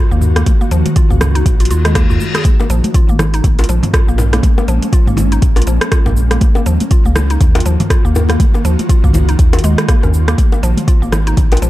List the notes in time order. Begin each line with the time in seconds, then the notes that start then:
Already playing: D#3 A#3 F4 F#4
0.11 D#2 A#3, shaker
0.21 mid tom, shaker
0.36 A#3, cross-stick, closed hi-hat, muted conga, shaker
0.46 D#4, kick, closed hi-hat, high conga, low conga, shaker
0.61 A#3, muted conga, shaker
0.71 D#2 F3, closed hi-hat, shaker
0.86 closed hi-hat, muted conga, high conga, shaker
0.96 F4, kick, closed hi-hat, shaker
1.10 C#2 A#3, mid tom, muted conga, high conga, shaker
1.21 cross-stick, closed hi-hat, mid tom, low conga, shaker
1.35 D#4, closed hi-hat, shaker
1.46 A#1, kick, closed hi-hat, reverse cymbal, muted conga, shaker
1.60 F4, closed hi-hat, shaker
1.65 closed hi-hat
1.71 D#2 F4, closed hi-hat, muted conga, shaker
1.85 G#3, cross-stick, closed hi-hat, shaker
1.95 A#3, kick, cross-stick, closed hi-hat, muted conga, shaker
2.10 D#2 F4, mid tom, shaker
2.20 high conga, shaker
2.35 G#4, cross-stick, closed hi-hat, muted conga, shaker
2.45 G#3 A#3 C#4, kick, closed hi-hat, high conga, shaker
2.59 A#3, high bongo, muted conga, shaker
2.70 A#1 F3, closed hi-hat, shaker
2.84 closed hi-hat, muted conga, high conga, shaker
2.94 F4, kick, closed hi-hat, shaker
3.09 G#1 A#3, muted conga, high conga, shaker
3.19 cross-stick, closed hi-hat, low bongo, low conga, shaker
3.34 D#4, closed hi-hat, shaker
3.44 A#1, kick, closed hi-hat, muted conga, high conga, low conga, shaker
3.59 F4, closed hi-hat, high bongo, shaker
3.64 closed hi-hat
3.69 A#1 F3, closed hi-hat, muted conga, shaker
3.83 closed hi-hat, mid tom, high conga, low conga, shaker
3.94 F4, kick, cross-stick, closed hi-hat, shaker
4.08 A#1 A#3, shaker
4.18 mid tom, high bongo, low bongo, shaker
4.33 A#3, cross-stick, closed hi-hat, low bongo, muted conga, shaker
4.43 kick, closed hi-hat, high conga, low conga, shaker
4.58 A#3, high bongo, muted conga, shaker
4.68 A#1 F3, closed hi-hat, shaker
4.82 closed hi-hat, muted conga, high conga, shaker
4.93 F4, kick, closed hi-hat, shaker
5.07 G#1 A#3, mid tom, muted conga, high conga, shaker
5.17 closed hi-hat, mid tom, low bongo, low conga, shaker
5.32 D#4, closed hi-hat, shaker
5.42 A#1, kick, closed hi-hat, muted conga, shaker
5.56 F4, closed hi-hat, high bongo, shaker
5.62 closed hi-hat
5.67 A#1 F3, closed hi-hat, muted conga, shaker
5.81 cross-stick, closed hi-hat, shaker
5.92 F4, kick, cross-stick, closed hi-hat, muted conga, shaker
6.06 A#1 A#3, mid tom, high bongo, shaker
6.17 shaker
6.31 A#3, cross-stick, closed hi-hat, muted conga, shaker
6.41 D#3 F4 F#4, kick, closed hi-hat, high conga, shaker
6.55 A#3, high bongo, muted conga, shaker
6.66 D#2 F3, closed hi-hat, shaker
6.80 closed hi-hat, muted conga, high conga, shaker
6.91 F4, kick, closed hi-hat, shaker
7.05 C#2 A#3, muted conga, high conga, shaker
7.16 cross-stick, closed hi-hat, low bongo, low conga, shaker
7.30 D#4, closed hi-hat, shaker
7.40 D#2, kick, closed hi-hat, muted conga, high conga, low conga, shaker
7.55 F4, closed hi-hat, high bongo, shaker
7.60 closed hi-hat
7.65 D#2 F3, closed hi-hat, muted conga, shaker
7.80 closed hi-hat, mid tom, high conga, low conga, shaker
7.90 F4, kick, cross-stick, closed hi-hat, shaker
8.05 D#2 A#3, shaker
8.15 mid tom, high bongo, low bongo, shaker
8.29 A#3, cross-stick, closed hi-hat, low bongo, muted conga, shaker
8.40 kick, closed hi-hat, high conga, low conga, shaker
8.54 A#3, high bongo, muted conga, shaker
8.65 D#2 F3, closed hi-hat, shaker
8.79 closed hi-hat, muted conga, high conga, shaker
8.89 F4, kick, closed hi-hat, shaker
9.04 C#2 A#3, kick, mid tom, muted conga, high conga, shaker
9.13 closed hi-hat, mid tom, low bongo, low conga, shaker
9.29 D#4, closed hi-hat, shaker
9.39 D#2, kick, closed hi-hat, muted conga, shaker
9.53 F4, closed hi-hat, high bongo, shaker
9.59 closed hi-hat
9.64 D#2 G#3, closed hi-hat, muted conga, shaker
9.78 cross-stick, closed hi-hat, shaker
9.89 A#3, kick, cross-stick, closed hi-hat, muted conga, shaker
10.03 D#2 C#4, mid tom, high bongo, shaker
10.14 shaker
10.28 A#3, cross-stick, closed hi-hat, muted conga, shaker
10.38 G#3 C#4, kick, closed hi-hat, high conga, shaker
10.52 A#3, high bongo, muted conga, shaker
10.63 A#1 F3, closed hi-hat, shaker
10.77 closed hi-hat, muted conga, high conga, shaker
10.88 F4, kick, closed hi-hat, shaker
11.02 G#1 A#3, muted conga, high conga, shaker
11.12 cross-stick, closed hi-hat, low bongo, low conga, shaker
11.27 D#4, closed hi-hat, shaker
11.37 A#1, kick, closed hi-hat, muted conga, high conga, low conga, shaker
11.52 F4, closed hi-hat, high bongo, shaker
11.57 closed hi-hat
11.62 A#1 F3, closed hi-hat, muted conga, shaker